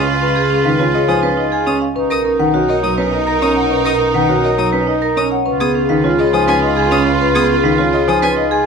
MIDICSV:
0, 0, Header, 1, 8, 480
1, 0, Start_track
1, 0, Tempo, 582524
1, 177, Time_signature, 3, 2, 24, 8
1, 7136, End_track
2, 0, Start_track
2, 0, Title_t, "Violin"
2, 0, Program_c, 0, 40
2, 776, Note_on_c, 0, 75, 55
2, 867, Note_off_c, 0, 75, 0
2, 894, Note_on_c, 0, 87, 62
2, 986, Note_off_c, 0, 87, 0
2, 1375, Note_on_c, 0, 87, 71
2, 1466, Note_off_c, 0, 87, 0
2, 1737, Note_on_c, 0, 87, 74
2, 1827, Note_off_c, 0, 87, 0
2, 2218, Note_on_c, 0, 75, 64
2, 2308, Note_off_c, 0, 75, 0
2, 2336, Note_on_c, 0, 87, 65
2, 2427, Note_off_c, 0, 87, 0
2, 2818, Note_on_c, 0, 87, 69
2, 2908, Note_off_c, 0, 87, 0
2, 3177, Note_on_c, 0, 87, 81
2, 3267, Note_off_c, 0, 87, 0
2, 3660, Note_on_c, 0, 75, 65
2, 3749, Note_off_c, 0, 75, 0
2, 3777, Note_on_c, 0, 87, 69
2, 3867, Note_off_c, 0, 87, 0
2, 4260, Note_on_c, 0, 87, 79
2, 4349, Note_off_c, 0, 87, 0
2, 4617, Note_on_c, 0, 87, 72
2, 4707, Note_off_c, 0, 87, 0
2, 5099, Note_on_c, 0, 75, 64
2, 5189, Note_off_c, 0, 75, 0
2, 5219, Note_on_c, 0, 87, 71
2, 5308, Note_off_c, 0, 87, 0
2, 5338, Note_on_c, 0, 80, 83
2, 5428, Note_off_c, 0, 80, 0
2, 5698, Note_on_c, 0, 87, 74
2, 5788, Note_off_c, 0, 87, 0
2, 6057, Note_on_c, 0, 87, 83
2, 6147, Note_off_c, 0, 87, 0
2, 6536, Note_on_c, 0, 75, 64
2, 6626, Note_off_c, 0, 75, 0
2, 6658, Note_on_c, 0, 87, 74
2, 6748, Note_off_c, 0, 87, 0
2, 6777, Note_on_c, 0, 80, 85
2, 6867, Note_off_c, 0, 80, 0
2, 7136, End_track
3, 0, Start_track
3, 0, Title_t, "Marimba"
3, 0, Program_c, 1, 12
3, 59, Note_on_c, 1, 77, 61
3, 183, Note_on_c, 1, 71, 75
3, 214, Note_off_c, 1, 77, 0
3, 335, Note_off_c, 1, 71, 0
3, 423, Note_on_c, 1, 68, 61
3, 537, Note_on_c, 1, 77, 82
3, 575, Note_off_c, 1, 68, 0
3, 693, Note_off_c, 1, 77, 0
3, 781, Note_on_c, 1, 68, 59
3, 894, Note_on_c, 1, 80, 79
3, 935, Note_off_c, 1, 68, 0
3, 1052, Note_off_c, 1, 80, 0
3, 1140, Note_on_c, 1, 75, 59
3, 1259, Note_on_c, 1, 80, 75
3, 1294, Note_off_c, 1, 75, 0
3, 1414, Note_off_c, 1, 80, 0
3, 1496, Note_on_c, 1, 77, 56
3, 1615, Note_on_c, 1, 71, 86
3, 1653, Note_off_c, 1, 77, 0
3, 1773, Note_off_c, 1, 71, 0
3, 1855, Note_on_c, 1, 70, 67
3, 1974, Note_on_c, 1, 78, 80
3, 2012, Note_off_c, 1, 70, 0
3, 2132, Note_off_c, 1, 78, 0
3, 2212, Note_on_c, 1, 70, 60
3, 2334, Note_on_c, 1, 82, 77
3, 2372, Note_off_c, 1, 70, 0
3, 2492, Note_off_c, 1, 82, 0
3, 2576, Note_on_c, 1, 75, 62
3, 2695, Note_on_c, 1, 82, 77
3, 2733, Note_off_c, 1, 75, 0
3, 2853, Note_off_c, 1, 82, 0
3, 2936, Note_on_c, 1, 78, 63
3, 3052, Note_on_c, 1, 71, 77
3, 3093, Note_off_c, 1, 78, 0
3, 3212, Note_off_c, 1, 71, 0
3, 3294, Note_on_c, 1, 70, 68
3, 3414, Note_on_c, 1, 78, 78
3, 3452, Note_off_c, 1, 70, 0
3, 3572, Note_off_c, 1, 78, 0
3, 3654, Note_on_c, 1, 70, 65
3, 3776, Note_on_c, 1, 82, 79
3, 3812, Note_off_c, 1, 70, 0
3, 3933, Note_off_c, 1, 82, 0
3, 4018, Note_on_c, 1, 75, 61
3, 4135, Note_on_c, 1, 82, 82
3, 4173, Note_off_c, 1, 75, 0
3, 4293, Note_off_c, 1, 82, 0
3, 4381, Note_on_c, 1, 78, 66
3, 4496, Note_on_c, 1, 71, 77
3, 4534, Note_off_c, 1, 78, 0
3, 4653, Note_off_c, 1, 71, 0
3, 4736, Note_on_c, 1, 68, 68
3, 4854, Note_on_c, 1, 77, 83
3, 4893, Note_off_c, 1, 68, 0
3, 5012, Note_off_c, 1, 77, 0
3, 5096, Note_on_c, 1, 68, 67
3, 5221, Note_on_c, 1, 80, 85
3, 5253, Note_off_c, 1, 68, 0
3, 5375, Note_off_c, 1, 80, 0
3, 5461, Note_on_c, 1, 75, 65
3, 5582, Note_on_c, 1, 80, 78
3, 5615, Note_off_c, 1, 75, 0
3, 5735, Note_off_c, 1, 80, 0
3, 5824, Note_on_c, 1, 77, 68
3, 5945, Note_on_c, 1, 71, 87
3, 5976, Note_off_c, 1, 77, 0
3, 6096, Note_off_c, 1, 71, 0
3, 6181, Note_on_c, 1, 68, 71
3, 6305, Note_on_c, 1, 77, 87
3, 6335, Note_off_c, 1, 68, 0
3, 6456, Note_off_c, 1, 77, 0
3, 6539, Note_on_c, 1, 68, 63
3, 6661, Note_on_c, 1, 80, 88
3, 6694, Note_off_c, 1, 68, 0
3, 6815, Note_off_c, 1, 80, 0
3, 6899, Note_on_c, 1, 75, 70
3, 7016, Note_on_c, 1, 80, 91
3, 7054, Note_off_c, 1, 75, 0
3, 7136, Note_off_c, 1, 80, 0
3, 7136, End_track
4, 0, Start_track
4, 0, Title_t, "Violin section"
4, 0, Program_c, 2, 48
4, 0, Note_on_c, 2, 65, 72
4, 0, Note_on_c, 2, 71, 74
4, 1464, Note_off_c, 2, 65, 0
4, 1464, Note_off_c, 2, 71, 0
4, 1614, Note_on_c, 2, 63, 78
4, 1618, Note_on_c, 2, 70, 76
4, 4343, Note_off_c, 2, 63, 0
4, 4345, Note_off_c, 2, 70, 0
4, 4499, Note_on_c, 2, 71, 76
4, 4500, Note_on_c, 2, 65, 77
4, 7136, Note_off_c, 2, 65, 0
4, 7136, Note_off_c, 2, 71, 0
4, 7136, End_track
5, 0, Start_track
5, 0, Title_t, "Vibraphone"
5, 0, Program_c, 3, 11
5, 0, Note_on_c, 3, 61, 75
5, 91, Note_off_c, 3, 61, 0
5, 173, Note_on_c, 3, 61, 54
5, 293, Note_on_c, 3, 68, 84
5, 332, Note_off_c, 3, 61, 0
5, 413, Note_on_c, 3, 61, 61
5, 452, Note_off_c, 3, 68, 0
5, 532, Note_on_c, 3, 71, 62
5, 572, Note_off_c, 3, 61, 0
5, 653, Note_on_c, 3, 65, 76
5, 692, Note_off_c, 3, 71, 0
5, 772, Note_on_c, 3, 73, 65
5, 812, Note_off_c, 3, 65, 0
5, 892, Note_on_c, 3, 63, 55
5, 932, Note_off_c, 3, 73, 0
5, 1012, Note_on_c, 3, 71, 75
5, 1052, Note_off_c, 3, 63, 0
5, 1131, Note_on_c, 3, 63, 66
5, 1171, Note_off_c, 3, 71, 0
5, 1251, Note_on_c, 3, 68, 70
5, 1291, Note_off_c, 3, 63, 0
5, 1372, Note_on_c, 3, 61, 76
5, 1411, Note_off_c, 3, 68, 0
5, 1531, Note_off_c, 3, 61, 0
5, 1614, Note_on_c, 3, 61, 59
5, 1733, Note_on_c, 3, 70, 83
5, 1772, Note_off_c, 3, 61, 0
5, 1852, Note_on_c, 3, 61, 55
5, 1892, Note_off_c, 3, 70, 0
5, 1973, Note_on_c, 3, 71, 63
5, 2011, Note_off_c, 3, 61, 0
5, 2093, Note_on_c, 3, 66, 81
5, 2132, Note_off_c, 3, 71, 0
5, 2214, Note_on_c, 3, 73, 63
5, 2252, Note_off_c, 3, 66, 0
5, 2334, Note_on_c, 3, 63, 62
5, 2372, Note_off_c, 3, 73, 0
5, 2454, Note_on_c, 3, 71, 74
5, 2492, Note_off_c, 3, 63, 0
5, 2575, Note_on_c, 3, 63, 65
5, 2612, Note_off_c, 3, 71, 0
5, 2695, Note_on_c, 3, 70, 71
5, 2732, Note_off_c, 3, 63, 0
5, 2815, Note_on_c, 3, 61, 75
5, 2852, Note_off_c, 3, 70, 0
5, 2933, Note_on_c, 3, 73, 56
5, 2972, Note_off_c, 3, 61, 0
5, 3055, Note_on_c, 3, 61, 62
5, 3092, Note_off_c, 3, 73, 0
5, 3173, Note_on_c, 3, 70, 80
5, 3213, Note_off_c, 3, 61, 0
5, 3293, Note_on_c, 3, 61, 58
5, 3332, Note_off_c, 3, 70, 0
5, 3413, Note_on_c, 3, 71, 67
5, 3452, Note_off_c, 3, 61, 0
5, 3534, Note_on_c, 3, 66, 79
5, 3572, Note_off_c, 3, 71, 0
5, 3653, Note_on_c, 3, 73, 63
5, 3692, Note_off_c, 3, 66, 0
5, 3775, Note_on_c, 3, 63, 56
5, 3812, Note_off_c, 3, 73, 0
5, 3894, Note_on_c, 3, 71, 75
5, 3933, Note_off_c, 3, 63, 0
5, 4014, Note_on_c, 3, 63, 69
5, 4052, Note_off_c, 3, 71, 0
5, 4136, Note_on_c, 3, 70, 74
5, 4172, Note_off_c, 3, 63, 0
5, 4257, Note_on_c, 3, 61, 73
5, 4293, Note_off_c, 3, 70, 0
5, 4377, Note_on_c, 3, 73, 56
5, 4413, Note_off_c, 3, 61, 0
5, 4497, Note_on_c, 3, 61, 63
5, 4533, Note_off_c, 3, 73, 0
5, 4617, Note_on_c, 3, 68, 81
5, 4653, Note_off_c, 3, 61, 0
5, 4738, Note_on_c, 3, 61, 64
5, 4773, Note_off_c, 3, 68, 0
5, 4858, Note_on_c, 3, 71, 67
5, 4893, Note_off_c, 3, 61, 0
5, 4977, Note_on_c, 3, 65, 79
5, 5013, Note_off_c, 3, 71, 0
5, 5097, Note_on_c, 3, 73, 66
5, 5133, Note_off_c, 3, 65, 0
5, 5216, Note_on_c, 3, 63, 65
5, 5253, Note_off_c, 3, 73, 0
5, 5336, Note_on_c, 3, 71, 72
5, 5373, Note_off_c, 3, 63, 0
5, 5455, Note_on_c, 3, 63, 63
5, 5493, Note_off_c, 3, 71, 0
5, 5577, Note_on_c, 3, 68, 78
5, 5613, Note_off_c, 3, 63, 0
5, 5696, Note_on_c, 3, 61, 84
5, 5733, Note_off_c, 3, 68, 0
5, 5815, Note_on_c, 3, 73, 63
5, 5853, Note_off_c, 3, 61, 0
5, 5935, Note_on_c, 3, 61, 64
5, 5973, Note_off_c, 3, 73, 0
5, 6055, Note_on_c, 3, 68, 89
5, 6092, Note_off_c, 3, 61, 0
5, 6173, Note_on_c, 3, 61, 64
5, 6212, Note_off_c, 3, 68, 0
5, 6293, Note_on_c, 3, 71, 64
5, 6332, Note_off_c, 3, 61, 0
5, 6413, Note_on_c, 3, 65, 77
5, 6452, Note_off_c, 3, 71, 0
5, 6533, Note_on_c, 3, 73, 68
5, 6572, Note_off_c, 3, 65, 0
5, 6655, Note_on_c, 3, 63, 65
5, 6692, Note_off_c, 3, 73, 0
5, 6775, Note_on_c, 3, 71, 80
5, 6813, Note_off_c, 3, 63, 0
5, 6895, Note_on_c, 3, 63, 70
5, 6933, Note_off_c, 3, 71, 0
5, 7013, Note_on_c, 3, 68, 74
5, 7053, Note_off_c, 3, 63, 0
5, 7136, Note_off_c, 3, 68, 0
5, 7136, End_track
6, 0, Start_track
6, 0, Title_t, "Oboe"
6, 0, Program_c, 4, 68
6, 0, Note_on_c, 4, 65, 63
6, 1464, Note_off_c, 4, 65, 0
6, 1617, Note_on_c, 4, 63, 63
6, 4344, Note_off_c, 4, 63, 0
6, 4495, Note_on_c, 4, 65, 71
6, 7136, Note_off_c, 4, 65, 0
6, 7136, End_track
7, 0, Start_track
7, 0, Title_t, "Grand piano"
7, 0, Program_c, 5, 0
7, 0, Note_on_c, 5, 61, 59
7, 94, Note_off_c, 5, 61, 0
7, 537, Note_on_c, 5, 51, 81
7, 656, Note_on_c, 5, 61, 64
7, 693, Note_off_c, 5, 51, 0
7, 813, Note_off_c, 5, 61, 0
7, 892, Note_on_c, 5, 53, 79
7, 1014, Note_on_c, 5, 61, 62
7, 1052, Note_off_c, 5, 53, 0
7, 1172, Note_off_c, 5, 61, 0
7, 1375, Note_on_c, 5, 61, 64
7, 1532, Note_off_c, 5, 61, 0
7, 1972, Note_on_c, 5, 51, 82
7, 2095, Note_on_c, 5, 61, 56
7, 2132, Note_off_c, 5, 51, 0
7, 2252, Note_off_c, 5, 61, 0
7, 2335, Note_on_c, 5, 54, 76
7, 2456, Note_on_c, 5, 61, 63
7, 2493, Note_off_c, 5, 54, 0
7, 2613, Note_off_c, 5, 61, 0
7, 2819, Note_on_c, 5, 61, 65
7, 2974, Note_off_c, 5, 61, 0
7, 3417, Note_on_c, 5, 51, 86
7, 3535, Note_on_c, 5, 61, 61
7, 3573, Note_off_c, 5, 51, 0
7, 3693, Note_off_c, 5, 61, 0
7, 3776, Note_on_c, 5, 54, 81
7, 3899, Note_on_c, 5, 61, 67
7, 3933, Note_off_c, 5, 54, 0
7, 4054, Note_off_c, 5, 61, 0
7, 4259, Note_on_c, 5, 61, 68
7, 4414, Note_off_c, 5, 61, 0
7, 4620, Note_on_c, 5, 59, 68
7, 4774, Note_off_c, 5, 59, 0
7, 4858, Note_on_c, 5, 51, 89
7, 4978, Note_on_c, 5, 61, 69
7, 5014, Note_off_c, 5, 51, 0
7, 5133, Note_off_c, 5, 61, 0
7, 5218, Note_on_c, 5, 53, 81
7, 5337, Note_on_c, 5, 61, 65
7, 5374, Note_off_c, 5, 53, 0
7, 5493, Note_off_c, 5, 61, 0
7, 5699, Note_on_c, 5, 61, 71
7, 5854, Note_off_c, 5, 61, 0
7, 6058, Note_on_c, 5, 59, 77
7, 6214, Note_off_c, 5, 59, 0
7, 6293, Note_on_c, 5, 51, 89
7, 6418, Note_on_c, 5, 61, 65
7, 6452, Note_off_c, 5, 51, 0
7, 6574, Note_off_c, 5, 61, 0
7, 6657, Note_on_c, 5, 53, 87
7, 6778, Note_on_c, 5, 61, 66
7, 6813, Note_off_c, 5, 53, 0
7, 6933, Note_off_c, 5, 61, 0
7, 7136, End_track
8, 0, Start_track
8, 0, Title_t, "Double bass section"
8, 0, Program_c, 6, 48
8, 0, Note_on_c, 6, 37, 58
8, 1487, Note_off_c, 6, 37, 0
8, 1615, Note_on_c, 6, 35, 61
8, 4367, Note_off_c, 6, 35, 0
8, 4497, Note_on_c, 6, 37, 67
8, 7136, Note_off_c, 6, 37, 0
8, 7136, End_track
0, 0, End_of_file